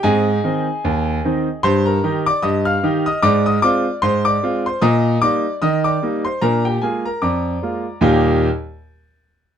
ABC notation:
X:1
M:2/4
L:1/16
Q:"Swing 16ths" 1/4=75
K:Eb
V:1 name="Grand piano"
[Aea]8 | [cc'] [Bb]2 [dd'] [ee'] [ff']2 [ee'] | [dd'] [ee'] [dd']2 [cc'] [dd']2 [cc'] | [ebe']2 [dd']2 [ee'] [dd']2 [cc'] |
[Bb] [Gg] [Aa] [Bb] [dbd']4 | [E,,B,,G,B,EGe']2 z6 |]
V:2 name="Grand piano"
[A,,C]2 [E,CE]2 E,,2 [E,CE]2 | G,,2 [E,EG]2 G,,2 [E,EG]2 | A,,2 [A,CF]2 A,,2 [A,CF]2 | B,,2 [G,B,E]2 E,2 [G,B,E]2 |
[B,,D]2 [A,B,F]2 F,,2 [A,B,F]2 | z8 |]